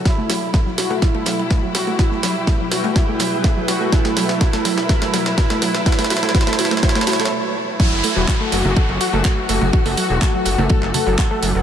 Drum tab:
CC |--------------------------------|--------------------------------|--------------------------------|--------------------------------|
RD |x---x---x---x---x-x-x-x-x---x---|x---x---x---x-x-x---x---x---x---|x---x---x---x---x-x-x-x-x---x---|x---x---x---x-x-x---x-----------|
HH |----o-------o-------o-------o---|----o-------o-------o-------o---|----o-------o-------o-------o---|--o-o-------o-------o-----------|
CP |--------------------------------|--------------------------------|--------------------------------|--------------------------------|
SD |o---o---o-o-o---o---o---o---o---|o-o-o---o---o---o---o---o---o---|o-o-o-o-o-o-o-o-o-o-o-o-o-o-o-o-|oooooooooooooooooooooooo--------|
CG |--------------O---------------O-|--------------O-----O-----------|--------------O---------------O-|--------------O-----O-----------|
BD |o-------o-------o-------o-------|o-------o-------o-------o-------|o-------o-------o-------o-------|o-------o-------o---------------|

CC |x-------------------------------|--------------------------------|
RD |x---x---x---x---x-x-x-x-x---x---|x---x---x---x-x-x---x---x---x---|
HH |----o-------o-------o-------o---|--o-o-------o-------o-------o---|
CP |--------x---------------x-------|--------x---------x-----x-------|
SD |--------o-o-------------o-------|--o-----o---------------o-------|
CG |--------------O---------------O-|--------------O-----O-----------|
BD |o-------o-------o-------o-------|o-------o-------o-------o-------|